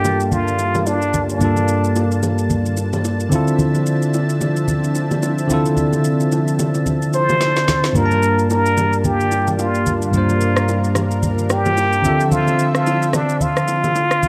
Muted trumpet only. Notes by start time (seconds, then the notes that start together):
Already playing: G4
0.32 F4
0.87 D4
1.30 D4
7.14 C5
7.96 A#4
8.51 A#4
9.05 G4
9.60 F4
10.03 F4
11.51 G4
12.33 F4
12.76 F4
13.14 D4
13.42 F4